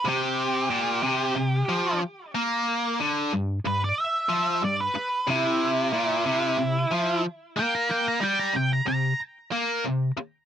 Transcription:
<<
  \new Staff \with { instrumentName = "Lead electric guitar" } { \time 4/4 \key c \major \tempo 4 = 92 g'2. r4 | r4. b'16 d''16 e''4 d''16 b'8. | e'2. r8 g''16 bes''16 | g''16 bes''16 g''16 bes''16 g''16 bes''16 bes''8 r2 | }
  \new Staff \with { instrumentName = "Distorted electric guitar" } { \clef bass \time 4/4 \key c \major c4 bes,8 c8 c8 f8 r8 bes8~ | bes8 d8 g,8 g,8 r8 f8 g,8 r8 | c4 bes,8 c8 c8 f8 r8 bes8~ | bes8 g8 c8 c8 r8 bes8 c8 r8 | }
>>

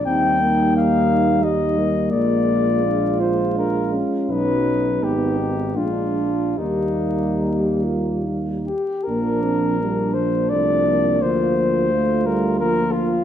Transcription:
<<
  \new Staff \with { instrumentName = "Flugelhorn" } { \time 3/4 \key ees \major \tempo 4 = 83 g''4 f''4 ees''4 | d''4. c''8 bes'8 r8 | b'4 g'4 f'4 | ees'2 r8 g'8 |
\key bes \major bes'4. c''8 d''4 | c''4. bes'8 bes'8 f'8 | }
  \new Staff \with { instrumentName = "French horn section" } { \time 3/4 \key ees \major ees'2. | f'2. | dis'2 d'4 | bes2~ bes8 r8 |
\key bes \major d'4 d'2 | f'8 f'2~ f'8 | }
  \new Staff \with { instrumentName = "Euphonium" } { \time 3/4 \key ees \major c'8 bes4. g8 bes8~ | bes4 d'8 f'8 d'8 des'8~ | des'4 ces'8 ees'8 d'8 r8 | g'4 g'8 f'8 ees'8 g'8 |
\key bes \major bes8 c'8 bes4 a8 bes8~ | bes4 a4 bes4 | }
  \new Staff \with { instrumentName = "Euphonium" } { \clef bass \time 3/4 \key ees \major g2. | aes2. | fis4 ces'4 aes8 r8 | g2~ g8 r8 |
\key bes \major f4 g8 f8 f4 | f4 a8 g8 f4 | }
  \new Staff \with { instrumentName = "Tuba" } { \clef bass \time 3/4 \key ees \major ees,2. | bes,,2~ bes,,8 r8 | b,,4 aes,,4 bes,,4 | ees,2~ ees,8 r8 |
\key bes \major bes,,2 c,4 | d,2. | }
>>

